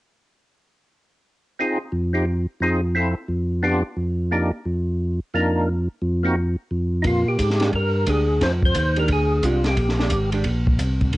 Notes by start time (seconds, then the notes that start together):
1.59 C4 D#4 F4 G#4
1.92 F2
2.13 C4 D#4 F4 G4
2.60 F2 C4 D#4 F4 G#4
2.95 C4 E4 F4 A4
3.28 F2
3.63 B3 D4 F4 G4
3.97 F2
4.31 A#3 D4 D#4 G4
4.65 F2
5.34 F2 A#3 D4 D#4 A#4
6.02 F2
6.23 A#3 C4 D#4 F#4
6.71 F2
7.02 A#2 D#4, kick, ride
7.07 F4
7.28 G4
7.38 G#2, kick, hi-hat pedal, ride
7.50 snare
7.60 G#3 D4 G4, snare, ride
7.72 G2 A#4, kick, ride
8.06 D2 G#3 D4 G4 G#4, kick, hi-hat pedal, ride
8.41 F2 C5, kick, snare, ride
8.63 C5, kick
8.75 D#2, kick, hi-hat pedal, ride
8.97 G#3 D4 G4 A#4, ride
9.08 D2, kick, ride
9.13 G#4
9.43 C2 G#3 D4 F4 G4, kick, hi-hat pedal, ride
9.64 G4, snare, ride
9.77 A#1, kick, ride
9.89 snare
9.99 G#3 D4 G4, snare
10.10 G#1, kick, hi-hat pedal, ride
10.32 G#3 D4 G4, ride
10.44 A#1, kick, ride
10.67 kick
10.79 C2, kick, hi-hat pedal, ride
11.01 kick, ride
11.13 D2, kick, ride